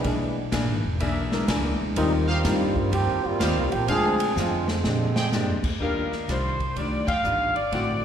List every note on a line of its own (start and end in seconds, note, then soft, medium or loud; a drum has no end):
0.00 0.48 E3 medium
0.00 0.48 G#3 medium
0.00 0.48 B3 medium
0.00 0.48 D4 medium
0.04 0.51 B1 medium
0.04 0.38 E3 soft
0.04 0.38 A#3 medium
0.04 0.38 D4 soft
0.04 0.39 G#4 medium
0.04 kick soft
0.04 ride medium
0.52 0.68 A#1 medium
0.52 0.85 E3 medium
0.52 0.86 A#3 medium
0.52 0.86 D4 medium
0.52 0.86 G#4 medium
0.52 kick soft
0.52 snare medium
0.52 hi-hat pedal medium
0.52 ride medium
0.68 0.84 G#1 medium
0.84 0.99 E1 medium
1.00 1.47 B1 medium
1.00 1.34 E3 soft
1.00 1.34 A#3 medium
1.00 1.34 D4 medium
1.00 1.74 G#4 medium
1.00 1.35 G#4 soft
1.00 1.74 A#4 medium
1.00 1.74 D5 medium
1.00 1.74 E5 medium
1.00 kick soft
1.00 ride medium
1.32 1.93 G#3 medium
1.32 1.93 B3 soft
1.32 1.94 D4 soft
1.32 1.94 E4 soft
1.32 1.94 A#4 medium
1.32 snare medium
1.48 1.78 C#2 medium
1.48 1.81 E3 medium
1.48 1.82 A#3 medium
1.48 1.82 D4 medium
1.48 1.82 G#4 medium
1.48 kick soft
1.48 snare medium
1.48 hi-hat pedal medium
1.48 ride medium
1.80 muted upright bass stroke soft
1.96 2.43 D#2 medium
1.96 2.29 D#3 soft
1.96 2.10 G3 medium
1.96 2.25 G3 medium
1.96 2.30 G3 soft
1.96 2.11 A#3 medium
1.96 2.10 C4 medium
1.96 2.25 C4 medium
1.96 2.30 C4 soft
1.96 2.10 D#4 medium
1.96 2.25 D#4 medium
1.96 2.25 F4 medium
1.96 2.30 F4 medium
1.96 2.25 A#4 medium
1.96 kick soft
1.96 ride medium
2.27 2.89 G3 medium
2.27 2.88 A#3 medium
2.27 2.89 C4 medium
2.27 2.89 F4 medium
2.27 2.39 G4 medium
2.27 2.39 C5 medium
2.27 2.39 D#5 medium
2.27 2.39 F5 loud
2.44 2.91 G2 loud
2.44 2.77 D#3 medium
2.44 2.73 G3 medium
2.44 2.78 G3 medium
2.44 2.73 C4 medium
2.44 2.78 C4 medium
2.44 2.73 D#4 medium
2.44 2.78 F4 medium
2.44 2.73 F4 medium
2.44 2.73 A#4 medium
2.44 kick soft
2.44 snare medium
2.44 hi-hat pedal medium
2.44 ride medium
2.76 kick medium
2.91 3.22 F2 medium
2.91 3.25 D#3 soft
2.91 3.24 F3 medium
2.91 3.25 G3 soft
2.91 3.23 A#3 medium
2.91 3.26 C4 soft
2.91 3.23 C4 medium
2.91 3.26 F4 medium
2.91 3.24 G4 loud
2.91 kick soft
2.91 ride medium
3.24 3.72 G3 medium
3.24 3.71 A#3 medium
3.24 3.70 C4 medium
3.24 3.72 F4 loud
3.24 muted upright bass stroke soft
3.40 3.58 D#2 medium
3.40 3.74 D#3 medium
3.40 3.74 G3 medium
3.40 3.74 C4 medium
3.40 3.74 F4 medium
3.40 3.61 G4 medium
3.40 3.61 C5 medium
3.40 3.61 D#5 medium
3.40 3.61 F5 medium
3.40 kick soft
3.40 snare medium
3.40 hi-hat pedal medium
3.40 ride medium
3.58 3.73 C2 medium
3.72 3.88 A#1 medium
3.72 3.88 F3 medium
3.72 3.88 A#3 medium
3.72 3.88 C4 medium
3.72 3.88 G4 loud
3.72 ride soft
3.88 4.35 D2 medium
3.88 4.22 D3 soft
3.88 4.34 F3 medium
3.88 4.17 G#3 medium
3.88 4.23 G#3 soft
3.88 4.17 C4 medium
3.88 4.33 C4 medium
3.88 4.23 C4 medium
3.88 4.33 D4 medium
3.88 4.17 D4 medium
3.88 4.17 F4 medium
3.88 4.23 F4 soft
3.88 4.09 G#4 medium
3.88 4.33 G#4 loud
3.88 4.18 G#4 medium
3.88 4.09 C5 medium
3.88 4.09 D5 medium
3.88 4.10 F5 loud
3.88 kick soft
3.88 ride medium
4.20 ride medium
4.36 4.83 F2 loud
4.36 4.70 D3 medium
4.36 4.67 G#3 medium
4.36 4.71 G#3 medium
4.36 4.68 C4 medium
4.36 4.71 C4 medium
4.36 4.68 D4 medium
4.36 4.68 F4 medium
4.36 4.71 F4 medium
4.36 snare medium
4.36 hi-hat pedal medium
4.68 5.60 D3 medium
4.68 5.60 F3 medium
4.68 5.60 G#3 medium
4.68 5.60 C4 medium
4.68 snare medium
4.84 5.31 A#2 medium
4.84 5.18 A#2 soft
4.84 5.18 G#3 soft
4.84 5.19 D4 soft
4.84 snare medium
4.88 5.19 G4 medium
5.16 5.27 G#4 medium
5.16 5.27 C5 medium
5.16 5.27 D5 medium
5.16 5.27 G5 loud
5.16 snare loud
5.31 5.49 G2 medium
5.31 5.66 A#2 medium
5.31 5.66 G#3 medium
5.31 5.66 D4 medium
5.31 5.67 G4 medium
5.31 snare medium
5.31 hi-hat pedal medium
5.49 5.63 F2 medium
5.64 5.79 D2 medium
5.64 kick medium
5.64 crash medium
5.80 6.27 D#2 medium
5.80 6.14 D#3 soft
5.80 6.14 G3 soft
5.80 6.08 A#3 soft
5.80 6.09 D4 soft
5.80 6.15 D4 soft
5.80 6.09 F4 soft
5.80 6.15 F4 soft
5.80 6.53 G4 medium
5.80 6.09 G4 medium
5.80 6.26 A#4 medium
5.80 6.53 D5 medium
5.80 6.53 D#5 medium
5.80 6.53 F5 medium
5.80 kick soft
6.12 snare soft
6.28 6.75 C2 medium
6.28 6.62 D#3 soft
6.28 6.62 G3 medium
6.28 6.62 D4 medium
6.28 6.62 F4 soft
6.28 6.77 C5 medium
6.28 kick soft
6.28 snare soft
6.28 hi-hat pedal soft
6.28 ride medium
6.60 kick soft
6.60 ride soft
6.76 7.23 D2 medium
6.76 7.10 D#3 soft
6.76 7.10 G3 soft
6.76 7.11 D4 soft
6.76 7.11 F4 soft
6.76 7.08 D5 medium
6.76 kick soft
6.76 ride medium
7.07 7.19 G4 medium
7.07 7.19 D5 medium
7.07 7.19 D#5 medium
7.07 7.52 F5 loud
7.07 7.19 G5 medium
7.07 kick medium
7.07 ride medium
7.23 7.70 G1 medium
7.23 7.57 D#3 medium
7.23 7.58 G3 medium
7.23 7.58 D4 medium
7.23 7.58 F4 medium
7.23 hi-hat pedal medium
7.55 8.05 D5 medium
7.55 ride soft
7.72 8.05 A1 medium
7.72 8.05 D3 soft
7.72 8.01 A3 soft
7.72 8.05 A3 soft
7.72 8.01 C4 soft
7.72 8.05 C4 soft
7.72 8.01 E4 soft
7.72 8.01 F#4 medium
7.72 8.05 F#4 soft
7.72 7.93 A4 medium
7.72 7.93 C5 medium
7.72 7.93 D5 medium
7.72 7.93 F#5 medium
7.72 kick soft
7.72 ride medium